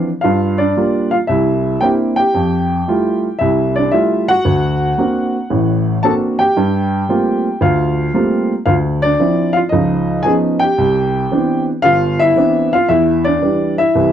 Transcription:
0.21 G2 F4 F5
0.58 D4 D5
0.76 G3 A#3 F4
1.11 F4 F5
1.27 C2 E4 E5
1.81 A#3 C4 D4 E4 G4 G5
2.16 G4 G5
2.34 F2
2.88 G3 A3 E4 F4
3.39 C2 E4 E5
3.76 D4 D5
3.92 G3 A3 E4 F4 E5
4.29 F#4 F#5
4.45 D2
4.98 A#3 C4 D4 F#4
5.50 A1 A2
6.03 A#3 C4 D4 F#4 A4 A5
6.39 G4 G5
6.57 G2
7.09 G3 A3 A#3 C4 F4
7.61 D2 F4 F5
8.14 G3 A3 A#3 C4 F4
8.66 D2 F4 F5
9.02 D4 D5
9.19 F3 C4 D4 E4
9.53 F4 F5
9.69 C#2 F3 D#4 D#5
10.23 F3 B3 C#4 D#4 G#4 G#5
10.60 G4 G5
10.78 C2
11.31 E3 B3 C4 D4
11.82 G1 F4 F5
12.20 E4 E5
12.36 E3 B3 C4 D4
12.73 F4 F5
12.89 E2 E4 E5
13.24 D4 D5
13.42 E3 G3 D4
13.78 E4 E5
13.95 C2 E3

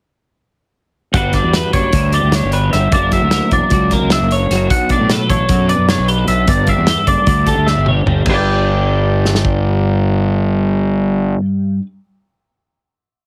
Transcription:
1.14 G1 G2 G3 D4 F#4 B4 F#5, kick, closed hi-hat
1.33 D4 D5, kick, snare, closed hi-hat
1.44 E2
1.53 B4, snare, closed hi-hat
1.73 F#1 D4 C#5, kick, closed hi-hat
1.93 D2 D3, kick, closed hi-hat
2.13 G3 D5, closed hi-hat
2.23 D2
2.32 D4 C#5, snare, closed hi-hat
2.43 G1
2.52 B4 C#5, closed hi-hat
2.73 G1 G2 E5, snare, closed hi-hat
2.92 F#1 F#3 A#3 D4 D5, kick, closed hi-hat
2.97 E4 A#4
3.12 D4 E5, kick, snare, closed hi-hat
3.22 D2
3.31 A#4, snare, closed hi-hat
3.51 E1 D4 D5, kick, closed hi-hat
3.70 C#2 F#3 D5, kick, snare, closed hi-hat
3.91 A#3 A#4, kick, snare, closed hi-hat
4.01 C#2
4.10 D4 E5, snare, closed hi-hat
4.20 F#1
4.31 C#5, closed hi-hat
4.50 F#1 F#3, snare, closed hi-hat
4.70 B1 B2 F#5, kick, closed hi-hat
4.89 D4 D5, kick, closed hi-hat
4.99 A2
5.10 A4 B4, snare, closed hi-hat
5.30 A1 D4 C#5, kick, closed hi-hat
5.49 F#2 F#3, kick, closed hi-hat
5.69 B3 D5, closed hi-hat
5.78 F#2
5.89 D4 C#5, snare, closed hi-hat
5.98 B1
6.08 G4 B4, closed hi-hat
6.18 A4
6.28 B1 B2 E5, closed hi-hat
6.47 G1 G2 D5, kick, closed hi-hat
6.67 D4 E5, kick, closed hi-hat
6.77 E2
6.87 G4, snare, closed hi-hat
6.98 A4
7.07 F#1 D4 D5, kick, closed hi-hat
7.27 D2 D3 D5, kick, closed hi-hat
7.47 G3 A4, kick, snare, closed hi-hat
7.57 D2
7.66 D4 E5, snare
7.77 G1
7.86 C#5, mid tom
8.06 G1 G2, floor tom
8.26 G1 G2 B4, kick, crash
8.30 G3 D4 D5
8.36 B4 G5
9.25 snare
9.35 snare
9.45 kick

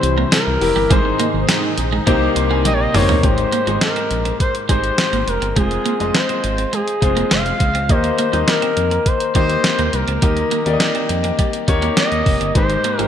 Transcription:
Already playing: C3 E3 G3 E4 G4 C5
0.03 C2, muted clean electric guitar stroke, closed hi-hat
0.18 A#3
0.32 C4 A#4, snare, closed hi-hat, tambourine
0.47 C2, muted clean electric guitar stroke
0.61 F1 E4 G4 A#4, open hi-hat
0.76 G1 G3
0.90 G#1 G#2 D#3 G#3 D#4 G#4 C5, kick, closed hi-hat
1.05 D#4 G4 A#4, muted clean electric guitar stroke
1.20 A#3, closed hi-hat
1.34 G#1 D#4 G#4 C5
1.49 C4 D#4 G#4, snare, closed hi-hat, tambourine
1.63 muted clean electric guitar stroke
1.78 A#1, closed hi-hat
1.92 G#3
2.06 C2 C3 G3 A#3 C4 D#4 G4 C5, kick, closed hi-hat
2.36 C2 C6, muted clean electric guitar stroke, closed hi-hat
2.51 A#3 G#5
2.65 A#1 G3 D#5 G5, closed hi-hat, high tom
2.73 C#5
2.80 D#5
2.94 G1 A#3 C4 D#4 G4 C5 C#5 D#5, muted clean electric guitar stroke, mid tom, open hi-hat
3.09 A#3, floor tom
3.17 C#5
3.23 G#1 G#2 G#3 D#4 G4 C5, kick, closed hi-hat
3.38 muted clean electric guitar stroke, closed hi-hat
3.52 A#3, closed hi-hat
3.67 G#1 G#3 D#4 G4 C5, closed hi-hat
3.81 A#4, snare, closed hi-hat
3.96 C4, closed hi-hat
4.11 A#1, muted clean electric guitar stroke, closed hi-hat
4.25 C4, closed hi-hat
4.40 C5, kick, closed hi-hat
4.55 closed hi-hat
4.69 G#1 G#3 D#4 G4 C5, kick, closed hi-hat
4.84 closed hi-hat
4.98 snare, closed hi-hat
5.13 G#1 A#3, closed hi-hat
5.28 F1 A#4, muted clean electric guitar stroke, closed hi-hat
5.42 G1 C4, closed hi-hat
5.56 F1 G#3 C4 F4 G#4 C5, kick, closed hi-hat
5.71 muted clean electric guitar stroke, closed hi-hat
5.86 A#3, closed hi-hat
6.00 F1 G#3 C4 F4 D#5, closed hi-hat
6.15 C5, snare, closed hi-hat
6.29 C4, closed hi-hat
6.44 G#1, muted clean electric guitar stroke, closed hi-hat
6.58 C4, closed hi-hat
6.73 G#3 G#4, closed hi-hat
6.88 closed hi-hat
7.01 F1 G#3 C4 F4 C5, muted clean electric guitar stroke, kick, closed hi-hat
7.17 A#3, closed hi-hat
7.31 F1 G#3 F5, snare, closed hi-hat
7.46 closed hi-hat
7.60 C#2, muted clean electric guitar stroke, kick, closed hi-hat
7.75 C4, closed hi-hat
7.89 D#2 D#3 A#3 D#4 G4 C5 D#5, kick, closed hi-hat
8.04 muted clean electric guitar stroke, closed hi-hat
8.18 A#3, closed hi-hat
8.33 D#2 G3 A#3 D#4 G4 D#5, closed hi-hat
8.48 A#4, snare, closed hi-hat
8.62 C4, closed hi-hat
8.77 F2, muted clean electric guitar stroke, closed hi-hat
8.91 C4, closed hi-hat
9.06 C5, kick, closed hi-hat
9.20 closed hi-hat
9.35 D#2 G3 A#3 D#4 G4 C5 D#5, kick, closed hi-hat
9.50 closed hi-hat
9.64 snare, closed hi-hat
9.79 D#2 A#3, closed hi-hat
9.93 C2 A#4, muted clean electric guitar stroke, closed hi-hat
10.08 C#2 C4, closed hi-hat
10.22 D#2 D#3 G3 A#3 D#4 G4 D#5, kick, closed hi-hat
10.37 muted clean electric guitar stroke, closed hi-hat
10.51 A#3, closed hi-hat
10.66 D#2 A#3 D#4 G4 D5, closed hi-hat
10.73 D#5
10.80 snare, closed hi-hat
10.95 C4, closed hi-hat
11.09 F2, muted clean electric guitar stroke, closed hi-hat
11.24 C4, closed hi-hat
11.39 G3, kick, closed hi-hat
11.53 closed hi-hat
11.67 D#2 A#3 D#4 G4 C#5, muted clean electric guitar stroke, kick, closed hi-hat
11.82 A#3, closed hi-hat
11.97 G3 D#5, snare, closed hi-hat
12.12 D#2, closed hi-hat
12.26 F1, muted clean electric guitar stroke, kick, open hi-hat
12.41 G1 C4, closed hi-hat
12.55 G#1 G#2 G#3 D#4 G4 C5, kick, closed hi-hat
12.70 muted clean electric guitar stroke, closed hi-hat
12.84 A#3, closed hi-hat
12.98 G#1 G#3 D#4 G4 A#4 C5, closed hi-hat

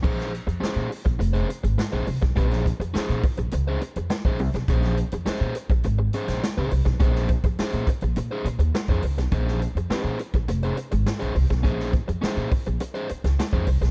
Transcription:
0.03 A#1 C#4 G#4 C5, kick, crash
0.19 snare, closed hi-hat
0.35 closed hi-hat
0.47 F2, muted overdriven electric guitar stroke, closed hi-hat
0.60 C#4 G#4 C5, muted upright bass stroke, snare, closed hi-hat
0.76 A#2
0.90 muted overdriven electric guitar stroke, open hi-hat
1.05 A#1, muted overdriven electric guitar stroke, kick, closed hi-hat
1.19 F1, muted overdriven electric guitar stroke, closed hi-hat
1.33 C#4 G#4 C5, closed hi-hat
1.49 muted overdriven electric guitar stroke, closed hi-hat
1.64 G#1, muted overdriven electric guitar stroke, closed hi-hat
1.78 muted overdriven electric guitar stroke, snare, closed hi-hat
1.92 A#1 C#4 G#4 C5
2.07 C2, muted overdriven electric guitar stroke, open hi-hat
2.22 B1, muted overdriven electric guitar stroke, kick, snare, closed hi-hat
2.36 A#1 C4 G4 B4, kick, closed hi-hat
2.47 C#4 G#4 C5
2.51 snare, closed hi-hat
2.66 kick, closed hi-hat
2.80 F2, muted overdriven electric guitar stroke, closed hi-hat
2.94 C#4 G#4 C5, muted upright bass stroke, snare, closed hi-hat
3.09 A#2, closed hi-hat
3.23 muted overdriven electric guitar stroke, kick, open hi-hat
3.37 A#1, muted overdriven electric guitar stroke, closed hi-hat
3.51 C#2, muted overdriven electric guitar stroke, closed hi-hat
3.68 C#4 G#4 C5
3.81 muted overdriven electric guitar stroke, closed hi-hat
3.96 F2, muted overdriven electric guitar stroke, closed hi-hat
4.10 muted overdriven electric guitar stroke, snare, closed hi-hat
4.25 A#1 C#4 G#4 C5, kick
4.39 C2, muted overdriven electric guitar stroke, open hi-hat
4.54 B1, muted overdriven electric guitar stroke, snare, closed hi-hat
4.68 A#1 C#4 G#4 C5, kick, closed hi-hat
4.83 snare, closed hi-hat
4.97 closed hi-hat
5.12 F2, muted overdriven electric guitar stroke, closed hi-hat
5.26 C#4 G#4 C5, muted upright bass stroke, snare, closed hi-hat
5.41 A#2
5.55 muted overdriven electric guitar stroke, closed hi-hat
5.69 A#1, muted overdriven electric guitar stroke, kick, closed hi-hat
5.84 G#1, muted overdriven electric guitar stroke, closed hi-hat
5.99 muted overdriven electric guitar stroke
6.13 C#4 G#4 C5, closed hi-hat
6.28 A#1 C#4 G#4 C5, snare, closed hi-hat
6.43 muted overdriven electric guitar stroke, snare, closed hi-hat
6.58 C#2 C#4 G#4 C5
6.71 C2, muted overdriven electric guitar stroke, open hi-hat
6.85 B1, muted overdriven electric guitar stroke, kick, snare, closed hi-hat
7.00 A#1 C#4 G#4 C5, kick, closed hi-hat
7.15 snare
7.29 kick, closed hi-hat
7.44 F2, muted overdriven electric guitar stroke, kick, closed hi-hat
7.59 C#4 G#4 C5, muted upright bass stroke, snare, closed hi-hat
7.73 A#2, closed hi-hat
7.87 muted overdriven electric guitar stroke, kick, closed hi-hat
8.01 A#1, muted overdriven electric guitar stroke, closed hi-hat
8.16 A#2, muted overdriven electric guitar stroke, closed hi-hat
8.31 C#4 G#4 C5
8.45 A#2, muted overdriven electric guitar stroke, closed hi-hat
8.59 D#2, muted overdriven electric guitar stroke, closed hi-hat
8.75 muted overdriven electric guitar stroke, snare, closed hi-hat
8.88 F2 C#4 G#4 C5, kick, closed hi-hat
9.02 C#2, muted overdriven electric guitar stroke, open hi-hat
9.17 B1, muted overdriven electric guitar stroke, snare, closed hi-hat
9.32 A#1 C#4 G#4 C5, kick, closed hi-hat
9.48 snare
9.62 closed hi-hat
9.75 F2, muted overdriven electric guitar stroke, closed hi-hat
9.90 C4 G4 B4, muted upright bass stroke, snare, closed hi-hat
10.01 A#2 C#4 G#4 C5
10.19 muted overdriven electric guitar stroke, closed hi-hat
10.33 A#1, muted overdriven electric guitar stroke, kick, closed hi-hat
10.48 F1, muted overdriven electric guitar stroke, closed hi-hat
10.63 C#4 G#4 C5, closed hi-hat
10.77 muted overdriven electric guitar stroke, closed hi-hat
10.91 G#1, muted overdriven electric guitar stroke, closed hi-hat
11.06 muted overdriven electric guitar stroke, snare, closed hi-hat
11.20 A#1 C#4 G#4 C5, closed hi-hat
11.35 C2, muted overdriven electric guitar stroke, open hi-hat
11.50 B1, muted overdriven electric guitar stroke, kick, snare, closed hi-hat
11.63 A#1 C#4 G#4 C5, kick, closed hi-hat
11.80 snare
11.93 kick, closed hi-hat
12.08 F2, muted overdriven electric guitar stroke, closed hi-hat
12.22 C#4 G#4 C5, muted upright bass stroke, snare, closed hi-hat
12.37 A#2
12.51 muted overdriven electric guitar stroke, kick, open hi-hat
12.66 A#1, muted overdriven electric guitar stroke, closed hi-hat
12.80 muted overdriven electric guitar stroke, closed hi-hat
12.94 C#4 G#4 C5, closed hi-hat
13.09 muted overdriven electric guitar stroke, muted upright bass stroke, closed hi-hat
13.24 C#2, muted overdriven electric guitar stroke, snare, closed hi-hat
13.39 muted overdriven electric guitar stroke, snare, closed hi-hat
13.53 F2 C#4 G#4 C5, kick
13.67 C2, muted overdriven electric guitar stroke, open hi-hat
13.81 B1, muted overdriven electric guitar stroke, snare, closed hi-hat

